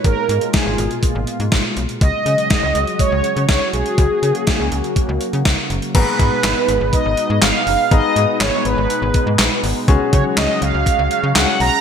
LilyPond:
<<
  \new Staff \with { instrumentName = "Analog polysynth" } { \time 4/4 \key gis \dorian \tempo 4 = 122 ais'4 gis'4 r2 | dis''2 cis''4 cis''8 gis'8~ | gis'2~ gis'8 r4. | b'2 dis''4 eis''4 |
dis''4 cis''8 b'2 r8 | r8 cis''8 dis''8 eis''4. fis''8 ais''8 | }
  \new Staff \with { instrumentName = "Grand piano" } { \time 4/4 \key gis \dorian r1 | r1 | r1 | <b gis' ais''>1 |
<b gis' ais''>1 | <cis' fis' gis'>2. <cis' fis' gis'>4 | }
  \new Staff \with { instrumentName = "Analog synth pad" } { \clef bass \time 4/4 \key gis \dorian << { <b, gis eis'>1 | <cis fis fis'>1~ | <cis fis fis'>1 | <b, gis dis'>1~ |
<b, gis dis'>1 | <cis fis fis'>1 | } \\ { ais,1 | gis1 | ais1 | b1 |
b1 | r1 | } >> }
  \new Staff \with { instrumentName = "FM bass" } { \clef bass \time 4/4 \key gis \dorian gis,,16 r16 gis,16 r8 gis,,16 gis,,16 r8 gis,,16 r16 gis,16 gis,,16 r16 b,,16 r16 | cis,16 r16 cis16 r8 cis,16 cis,16 r8 cis,16 r16 cis16 cis,16 r16 b,,16 r16 | cis,16 r16 cis16 r8 cis,16 cis,16 r8 cis,16 r16 cis16 cis,16 r16 fis,,16 r16 | gis,,16 r16 gis,16 r16 gis,,16 r16 gis,,16 gis,,16 r16 gis,,16 r16 gis,16 gis,,16 r16 fis,,16 r16 |
gis,,16 r16 gis,16 r16 gis,,16 r16 gis,,16 gis,,16 r16 gis,,16 r16 gis,16 ais,,16 r16 gis,,16 r16 | cis,16 r16 cis16 r16 cis,16 r16 cis,16 cis,16 r16 cis,16 r16 cis16 cis,16 r16 b,,16 r16 | }
  \new DrumStaff \with { instrumentName = "Drums" } \drummode { \time 4/4 <hh bd>8 hh16 hh16 <hh bd sn>8 hh16 hh16 <hh bd>8 hh16 hh16 <hh bd sn>8 hh16 hh16 | <hh bd>8 hh16 hh16 <hh bd sn>8 hh16 hh16 <hh bd>8 hh16 hh16 <hh bd sn>8 hh16 hh16 | <hh bd>8 hh16 hh16 <hh bd sn>8 hh16 hh16 <hh bd>8 hh16 hh16 <hh bd sn>8 hh16 hh16 | <cymc hh bd>8 <hh bd>8 <hc hh sn>8 hh8 <hh bd>8 hh8 <hc hh sn>8 hho8 |
<hh bd>8 hh8 <hc hh sn>8 hh8 hh8 <hh bd>8 <hc hh sn>8 hho8 | <hh bd>8 <hh bd>8 <hc hh sn>8 hh8 <hh bd>8 hh8 <hc hh sn>8 hho8 | }
>>